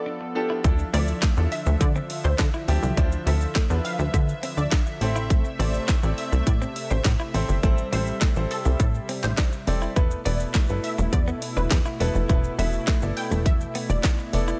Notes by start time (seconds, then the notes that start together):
Already playing: F3 B3 A4 D5
0.06 D4
0.21 muted clean electric guitar stroke
0.35 D4 F4 G4 A4
0.50 E4
0.64 D2 D3 F3 D4 E4 F4 A4 E5, kick, closed hi-hat, shaker
0.79 muted clean electric guitar stroke, shaker
0.93 D2 C4 D4 E4 F4 A4 D5, open hi-hat, shaker
1.08 shaker
1.22 A3, kick, snare, clap, closed hi-hat, shaker
1.37 E2 D4 E4 F4 A4, muted clean electric guitar stroke, shaker
1.52 E5, open hi-hat, shaker
1.66 D2 A3, shaker
1.81 D3 D5, kick, closed hi-hat, shaker
1.96 C4, shaker
2.10 muted clean electric guitar stroke, open hi-hat, shaker
2.24 D2 D4 C5, shaker
2.38 D3, kick, snare, clap, closed hi-hat, shaker
2.54 E4, shaker
2.68 D2 C4 D4 E4 F4 G4, open hi-hat, shaker
2.83 C2, shaker
2.97 D2 D4 E4 F4 C5, kick, closed hi-hat, shaker
3.12 muted clean electric guitar stroke, shaker
3.26 D2 C4 D4 E4 F4 A4 E5, open hi-hat, shaker
3.41 shaker
3.55 A3, kick, snare, clap, closed hi-hat, shaker
3.70 E2 D4 E4 F4 B4, muted clean electric guitar stroke, shaker
3.85 F5, open hi-hat, shaker
3.99 D2 A3, shaker
4.14 D3 E5, muted clean electric guitar stroke, kick, closed hi-hat, shaker
4.29 shaker
4.43 C4, open hi-hat, shaker
4.57 D2 D4 D5, shaker
4.71 D4, kick, snare, clap, closed hi-hat, shaker
4.86 muted clean electric guitar stroke, shaker
5.01 A1 C3 A3 C4 E4 A4 C5, open hi-hat, shaker
5.16 E4, shaker
5.30 A3, kick, closed hi-hat, shaker
5.45 muted clean electric guitar stroke, shaker
5.59 A1 C4 E4 A4 C5 D5, open hi-hat, shaker
5.74 shaker
5.88 A3, kick, snare, clap, closed hi-hat, shaker
6.03 A1 C4 E4 A4 D5, muted clean electric guitar stroke, shaker
6.18 E5, open hi-hat, shaker
6.32 C2 A3, shaker
6.47 A2 D5, kick, closed hi-hat, shaker
6.62 C4, shaker
6.76 muted clean electric guitar stroke, open hi-hat, shaker
6.91 A1 D4 C5, shaker
7.04 A2, muted clean electric guitar stroke, kick, snare, clap, closed hi-hat, shaker
7.20 E4, shaker
7.34 A1 G3 C4 E4 A4 C5, open hi-hat, shaker
7.49 G1, shaker
7.63 A1 A3 C4 E4 A4 C5, kick, closed hi-hat, shaker
7.78 muted clean electric guitar stroke, shaker
7.92 A1 C4 E4 A4 C5, open hi-hat, shaker
8.07 shaker
8.21 A3, kick, snare, clap, closed hi-hat, shaker
8.36 A1 C4 E4 A4 C5, muted clean electric guitar stroke, shaker
8.51 A4, open hi-hat, shaker
8.65 C2 A3, shaker
8.80 A2 A4, muted clean electric guitar stroke, kick, closed hi-hat, shaker
8.95 shaker
9.09 C4, open hi-hat, shaker
9.23 A1 D4 C5, clap, shaker
9.37 D4, kick, snare, clap, closed hi-hat, shaker
9.52 muted clean electric guitar stroke, shaker
9.67 F1 C4 E4 A4 D5, open hi-hat, shaker
9.82 E4, shaker
9.96 E1 B2 A3 B3 E4 A4 B4, kick, closed hi-hat, shaker
10.11 muted clean electric guitar stroke, shaker
10.25 E1 B3 E4 A4 B4 D5, open hi-hat, shaker
10.40 shaker
10.54 A3, kick, snare, clap, closed hi-hat, shaker
10.69 G1 B3 E4 A4 B4, muted clean electric guitar stroke, shaker
10.84 E5, open hi-hat, shaker
10.98 E1 A3, shaker
11.13 E2 D5, kick, closed hi-hat, shaker
11.28 B3, shaker
11.42 muted clean electric guitar stroke, open hi-hat, shaker
11.57 E1 D4 B4, shaker
11.71 E2, kick, snare, clap, closed hi-hat, shaker
11.86 E4, shaker
12.00 E1 B3 D4 E4 A4 B4, open hi-hat, shaker
12.15 F1, shaker
12.29 E1 B3 E4 A4 B4, kick, closed hi-hat, shaker
12.44 muted clean electric guitar stroke, shaker
12.58 E1 B3 E4 A4 B4 E5, open hi-hat, shaker
12.73 shaker
12.87 A3, kick, snare, clap, closed hi-hat, shaker
13.02 G1 B3 E4 A4 D5, muted clean electric guitar stroke, shaker
13.17 G5, open hi-hat, shaker
13.31 E1 A3, shaker
13.46 E2 E5, muted clean electric guitar stroke, kick, closed hi-hat, shaker
13.61 shaker
13.75 B3, open hi-hat, shaker
13.89 E1 D4 D5, shaker
14.03 D4, kick, snare, clap, closed hi-hat, shaker
14.19 muted clean electric guitar stroke, shaker
14.33 F1 B3 E4 A4 D5, open hi-hat, shaker
14.48 E4, shaker